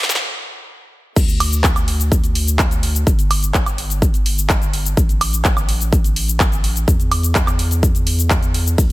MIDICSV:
0, 0, Header, 1, 3, 480
1, 0, Start_track
1, 0, Tempo, 476190
1, 1173, Time_signature, 4, 2, 24, 8
1, 8992, End_track
2, 0, Start_track
2, 0, Title_t, "Sub bass"
2, 0, Program_c, 0, 38
2, 0, Note_on_c, 0, 40, 91
2, 212, Note_off_c, 0, 40, 0
2, 1174, Note_on_c, 0, 38, 90
2, 3069, Note_off_c, 0, 38, 0
2, 3092, Note_on_c, 0, 31, 94
2, 4988, Note_off_c, 0, 31, 0
2, 5012, Note_on_c, 0, 33, 86
2, 6908, Note_off_c, 0, 33, 0
2, 6932, Note_on_c, 0, 40, 92
2, 8829, Note_off_c, 0, 40, 0
2, 8853, Note_on_c, 0, 38, 87
2, 8992, Note_off_c, 0, 38, 0
2, 8992, End_track
3, 0, Start_track
3, 0, Title_t, "Drums"
3, 33, Note_on_c, 9, 38, 98
3, 93, Note_off_c, 9, 38, 0
3, 93, Note_on_c, 9, 38, 101
3, 93, Note_on_c, 9, 42, 45
3, 101, Note_on_c, 9, 69, 73
3, 153, Note_off_c, 9, 38, 0
3, 153, Note_on_c, 9, 38, 100
3, 194, Note_off_c, 9, 42, 0
3, 202, Note_off_c, 9, 69, 0
3, 253, Note_off_c, 9, 38, 0
3, 1174, Note_on_c, 9, 36, 122
3, 1174, Note_on_c, 9, 42, 74
3, 1174, Note_on_c, 9, 49, 106
3, 1182, Note_on_c, 9, 69, 58
3, 1274, Note_off_c, 9, 36, 0
3, 1275, Note_off_c, 9, 42, 0
3, 1275, Note_off_c, 9, 49, 0
3, 1283, Note_off_c, 9, 69, 0
3, 1294, Note_on_c, 9, 42, 44
3, 1302, Note_on_c, 9, 69, 33
3, 1395, Note_off_c, 9, 42, 0
3, 1403, Note_off_c, 9, 69, 0
3, 1414, Note_on_c, 9, 46, 109
3, 1414, Note_on_c, 9, 76, 65
3, 1515, Note_off_c, 9, 46, 0
3, 1515, Note_off_c, 9, 76, 0
3, 1534, Note_on_c, 9, 42, 41
3, 1541, Note_on_c, 9, 69, 61
3, 1634, Note_off_c, 9, 42, 0
3, 1642, Note_off_c, 9, 69, 0
3, 1652, Note_on_c, 9, 39, 126
3, 1653, Note_on_c, 9, 36, 117
3, 1654, Note_on_c, 9, 42, 72
3, 1661, Note_on_c, 9, 69, 59
3, 1752, Note_off_c, 9, 39, 0
3, 1754, Note_off_c, 9, 36, 0
3, 1754, Note_off_c, 9, 42, 0
3, 1762, Note_off_c, 9, 69, 0
3, 1774, Note_on_c, 9, 42, 40
3, 1774, Note_on_c, 9, 76, 61
3, 1782, Note_on_c, 9, 69, 32
3, 1875, Note_off_c, 9, 42, 0
3, 1875, Note_off_c, 9, 76, 0
3, 1883, Note_off_c, 9, 69, 0
3, 1894, Note_on_c, 9, 46, 110
3, 1994, Note_off_c, 9, 46, 0
3, 2013, Note_on_c, 9, 42, 45
3, 2021, Note_on_c, 9, 69, 71
3, 2114, Note_off_c, 9, 42, 0
3, 2122, Note_off_c, 9, 69, 0
3, 2133, Note_on_c, 9, 36, 111
3, 2133, Note_on_c, 9, 42, 68
3, 2141, Note_on_c, 9, 69, 54
3, 2234, Note_off_c, 9, 36, 0
3, 2234, Note_off_c, 9, 42, 0
3, 2242, Note_off_c, 9, 69, 0
3, 2254, Note_on_c, 9, 42, 42
3, 2262, Note_on_c, 9, 69, 35
3, 2355, Note_off_c, 9, 42, 0
3, 2362, Note_off_c, 9, 69, 0
3, 2373, Note_on_c, 9, 46, 106
3, 2474, Note_off_c, 9, 46, 0
3, 2494, Note_on_c, 9, 42, 42
3, 2501, Note_on_c, 9, 69, 69
3, 2594, Note_off_c, 9, 42, 0
3, 2602, Note_off_c, 9, 69, 0
3, 2611, Note_on_c, 9, 39, 126
3, 2613, Note_on_c, 9, 36, 127
3, 2613, Note_on_c, 9, 42, 65
3, 2621, Note_on_c, 9, 69, 56
3, 2712, Note_off_c, 9, 39, 0
3, 2714, Note_off_c, 9, 36, 0
3, 2714, Note_off_c, 9, 42, 0
3, 2722, Note_off_c, 9, 69, 0
3, 2734, Note_on_c, 9, 42, 43
3, 2742, Note_on_c, 9, 69, 36
3, 2834, Note_off_c, 9, 42, 0
3, 2842, Note_off_c, 9, 69, 0
3, 2853, Note_on_c, 9, 46, 114
3, 2954, Note_off_c, 9, 46, 0
3, 2973, Note_on_c, 9, 42, 46
3, 2981, Note_on_c, 9, 69, 73
3, 3074, Note_off_c, 9, 42, 0
3, 3082, Note_off_c, 9, 69, 0
3, 3092, Note_on_c, 9, 42, 69
3, 3093, Note_on_c, 9, 36, 122
3, 3100, Note_on_c, 9, 69, 55
3, 3193, Note_off_c, 9, 36, 0
3, 3193, Note_off_c, 9, 42, 0
3, 3201, Note_off_c, 9, 69, 0
3, 3213, Note_on_c, 9, 42, 42
3, 3220, Note_on_c, 9, 69, 32
3, 3313, Note_off_c, 9, 42, 0
3, 3321, Note_off_c, 9, 69, 0
3, 3333, Note_on_c, 9, 46, 106
3, 3333, Note_on_c, 9, 76, 62
3, 3434, Note_off_c, 9, 46, 0
3, 3434, Note_off_c, 9, 76, 0
3, 3453, Note_on_c, 9, 42, 39
3, 3461, Note_on_c, 9, 69, 62
3, 3554, Note_off_c, 9, 42, 0
3, 3562, Note_off_c, 9, 69, 0
3, 3571, Note_on_c, 9, 39, 125
3, 3572, Note_on_c, 9, 36, 123
3, 3573, Note_on_c, 9, 42, 67
3, 3581, Note_on_c, 9, 69, 56
3, 3672, Note_off_c, 9, 39, 0
3, 3673, Note_off_c, 9, 36, 0
3, 3674, Note_off_c, 9, 42, 0
3, 3682, Note_off_c, 9, 69, 0
3, 3693, Note_on_c, 9, 42, 41
3, 3693, Note_on_c, 9, 76, 63
3, 3701, Note_on_c, 9, 69, 31
3, 3794, Note_off_c, 9, 42, 0
3, 3794, Note_off_c, 9, 76, 0
3, 3802, Note_off_c, 9, 69, 0
3, 3813, Note_on_c, 9, 46, 107
3, 3913, Note_off_c, 9, 46, 0
3, 3933, Note_on_c, 9, 42, 42
3, 3941, Note_on_c, 9, 69, 68
3, 4034, Note_off_c, 9, 42, 0
3, 4041, Note_off_c, 9, 69, 0
3, 4052, Note_on_c, 9, 36, 117
3, 4053, Note_on_c, 9, 42, 63
3, 4061, Note_on_c, 9, 69, 51
3, 4153, Note_off_c, 9, 36, 0
3, 4153, Note_off_c, 9, 42, 0
3, 4161, Note_off_c, 9, 69, 0
3, 4173, Note_on_c, 9, 42, 43
3, 4181, Note_on_c, 9, 69, 32
3, 4274, Note_off_c, 9, 42, 0
3, 4281, Note_off_c, 9, 69, 0
3, 4293, Note_on_c, 9, 46, 108
3, 4394, Note_off_c, 9, 46, 0
3, 4413, Note_on_c, 9, 42, 40
3, 4421, Note_on_c, 9, 69, 64
3, 4514, Note_off_c, 9, 42, 0
3, 4522, Note_off_c, 9, 69, 0
3, 4531, Note_on_c, 9, 39, 127
3, 4532, Note_on_c, 9, 36, 125
3, 4533, Note_on_c, 9, 42, 69
3, 4541, Note_on_c, 9, 69, 54
3, 4632, Note_off_c, 9, 39, 0
3, 4633, Note_off_c, 9, 36, 0
3, 4634, Note_off_c, 9, 42, 0
3, 4642, Note_off_c, 9, 69, 0
3, 4653, Note_on_c, 9, 42, 40
3, 4661, Note_on_c, 9, 69, 36
3, 4754, Note_off_c, 9, 42, 0
3, 4762, Note_off_c, 9, 69, 0
3, 4772, Note_on_c, 9, 46, 113
3, 4873, Note_off_c, 9, 46, 0
3, 4893, Note_on_c, 9, 42, 43
3, 4901, Note_on_c, 9, 69, 68
3, 4994, Note_off_c, 9, 42, 0
3, 5002, Note_off_c, 9, 69, 0
3, 5012, Note_on_c, 9, 36, 118
3, 5013, Note_on_c, 9, 42, 67
3, 5021, Note_on_c, 9, 69, 55
3, 5113, Note_off_c, 9, 36, 0
3, 5114, Note_off_c, 9, 42, 0
3, 5122, Note_off_c, 9, 69, 0
3, 5133, Note_on_c, 9, 42, 39
3, 5141, Note_on_c, 9, 69, 32
3, 5234, Note_off_c, 9, 42, 0
3, 5242, Note_off_c, 9, 69, 0
3, 5253, Note_on_c, 9, 46, 112
3, 5253, Note_on_c, 9, 76, 68
3, 5353, Note_off_c, 9, 46, 0
3, 5353, Note_off_c, 9, 76, 0
3, 5373, Note_on_c, 9, 42, 37
3, 5381, Note_on_c, 9, 69, 63
3, 5474, Note_off_c, 9, 42, 0
3, 5482, Note_off_c, 9, 69, 0
3, 5489, Note_on_c, 9, 39, 127
3, 5492, Note_on_c, 9, 36, 123
3, 5492, Note_on_c, 9, 42, 66
3, 5499, Note_on_c, 9, 69, 52
3, 5590, Note_off_c, 9, 39, 0
3, 5592, Note_off_c, 9, 42, 0
3, 5593, Note_off_c, 9, 36, 0
3, 5600, Note_off_c, 9, 69, 0
3, 5612, Note_on_c, 9, 42, 37
3, 5612, Note_on_c, 9, 76, 69
3, 5620, Note_on_c, 9, 69, 33
3, 5713, Note_off_c, 9, 42, 0
3, 5713, Note_off_c, 9, 76, 0
3, 5721, Note_off_c, 9, 69, 0
3, 5732, Note_on_c, 9, 46, 109
3, 5832, Note_off_c, 9, 46, 0
3, 5852, Note_on_c, 9, 42, 41
3, 5860, Note_on_c, 9, 69, 69
3, 5953, Note_off_c, 9, 42, 0
3, 5961, Note_off_c, 9, 69, 0
3, 5972, Note_on_c, 9, 42, 62
3, 5973, Note_on_c, 9, 36, 126
3, 5980, Note_on_c, 9, 69, 49
3, 6073, Note_off_c, 9, 36, 0
3, 6073, Note_off_c, 9, 42, 0
3, 6081, Note_off_c, 9, 69, 0
3, 6093, Note_on_c, 9, 42, 41
3, 6101, Note_on_c, 9, 69, 33
3, 6193, Note_off_c, 9, 42, 0
3, 6201, Note_off_c, 9, 69, 0
3, 6213, Note_on_c, 9, 46, 114
3, 6313, Note_off_c, 9, 46, 0
3, 6334, Note_on_c, 9, 42, 42
3, 6342, Note_on_c, 9, 69, 68
3, 6435, Note_off_c, 9, 42, 0
3, 6443, Note_off_c, 9, 69, 0
3, 6451, Note_on_c, 9, 39, 124
3, 6453, Note_on_c, 9, 36, 127
3, 6453, Note_on_c, 9, 42, 62
3, 6461, Note_on_c, 9, 69, 55
3, 6552, Note_off_c, 9, 39, 0
3, 6553, Note_off_c, 9, 36, 0
3, 6554, Note_off_c, 9, 42, 0
3, 6562, Note_off_c, 9, 69, 0
3, 6573, Note_on_c, 9, 42, 41
3, 6581, Note_on_c, 9, 69, 34
3, 6674, Note_off_c, 9, 42, 0
3, 6682, Note_off_c, 9, 69, 0
3, 6693, Note_on_c, 9, 46, 112
3, 6793, Note_off_c, 9, 46, 0
3, 6812, Note_on_c, 9, 42, 39
3, 6820, Note_on_c, 9, 69, 69
3, 6913, Note_off_c, 9, 42, 0
3, 6921, Note_off_c, 9, 69, 0
3, 6933, Note_on_c, 9, 36, 117
3, 6933, Note_on_c, 9, 42, 65
3, 6941, Note_on_c, 9, 69, 58
3, 7033, Note_off_c, 9, 36, 0
3, 7034, Note_off_c, 9, 42, 0
3, 7042, Note_off_c, 9, 69, 0
3, 7052, Note_on_c, 9, 42, 39
3, 7060, Note_on_c, 9, 69, 33
3, 7153, Note_off_c, 9, 42, 0
3, 7161, Note_off_c, 9, 69, 0
3, 7172, Note_on_c, 9, 46, 106
3, 7172, Note_on_c, 9, 76, 73
3, 7273, Note_off_c, 9, 46, 0
3, 7273, Note_off_c, 9, 76, 0
3, 7291, Note_on_c, 9, 42, 36
3, 7299, Note_on_c, 9, 69, 61
3, 7392, Note_off_c, 9, 42, 0
3, 7400, Note_off_c, 9, 69, 0
3, 7409, Note_on_c, 9, 39, 122
3, 7411, Note_on_c, 9, 42, 65
3, 7412, Note_on_c, 9, 36, 121
3, 7419, Note_on_c, 9, 69, 55
3, 7510, Note_off_c, 9, 39, 0
3, 7512, Note_off_c, 9, 42, 0
3, 7513, Note_off_c, 9, 36, 0
3, 7520, Note_off_c, 9, 69, 0
3, 7530, Note_on_c, 9, 39, 34
3, 7532, Note_on_c, 9, 42, 36
3, 7532, Note_on_c, 9, 76, 66
3, 7540, Note_on_c, 9, 69, 31
3, 7631, Note_off_c, 9, 39, 0
3, 7633, Note_off_c, 9, 42, 0
3, 7633, Note_off_c, 9, 76, 0
3, 7641, Note_off_c, 9, 69, 0
3, 7652, Note_on_c, 9, 46, 116
3, 7752, Note_off_c, 9, 46, 0
3, 7773, Note_on_c, 9, 42, 40
3, 7780, Note_on_c, 9, 69, 67
3, 7873, Note_off_c, 9, 42, 0
3, 7881, Note_off_c, 9, 69, 0
3, 7892, Note_on_c, 9, 36, 114
3, 7892, Note_on_c, 9, 42, 61
3, 7900, Note_on_c, 9, 69, 52
3, 7993, Note_off_c, 9, 36, 0
3, 7993, Note_off_c, 9, 42, 0
3, 8001, Note_off_c, 9, 69, 0
3, 8012, Note_on_c, 9, 42, 42
3, 8020, Note_on_c, 9, 69, 34
3, 8113, Note_off_c, 9, 42, 0
3, 8120, Note_off_c, 9, 69, 0
3, 8132, Note_on_c, 9, 46, 112
3, 8232, Note_off_c, 9, 46, 0
3, 8252, Note_on_c, 9, 42, 38
3, 8260, Note_on_c, 9, 69, 67
3, 8353, Note_off_c, 9, 42, 0
3, 8361, Note_off_c, 9, 69, 0
3, 8370, Note_on_c, 9, 39, 121
3, 8372, Note_on_c, 9, 36, 127
3, 8372, Note_on_c, 9, 42, 64
3, 8380, Note_on_c, 9, 69, 55
3, 8471, Note_off_c, 9, 39, 0
3, 8473, Note_off_c, 9, 36, 0
3, 8473, Note_off_c, 9, 42, 0
3, 8481, Note_off_c, 9, 69, 0
3, 8493, Note_on_c, 9, 42, 41
3, 8501, Note_on_c, 9, 69, 35
3, 8594, Note_off_c, 9, 42, 0
3, 8601, Note_off_c, 9, 69, 0
3, 8612, Note_on_c, 9, 46, 113
3, 8713, Note_off_c, 9, 46, 0
3, 8741, Note_on_c, 9, 69, 71
3, 8841, Note_off_c, 9, 69, 0
3, 8852, Note_on_c, 9, 36, 117
3, 8853, Note_on_c, 9, 42, 63
3, 8853, Note_on_c, 9, 51, 61
3, 8861, Note_on_c, 9, 69, 58
3, 8953, Note_off_c, 9, 36, 0
3, 8954, Note_off_c, 9, 42, 0
3, 8954, Note_off_c, 9, 51, 0
3, 8961, Note_off_c, 9, 69, 0
3, 8992, End_track
0, 0, End_of_file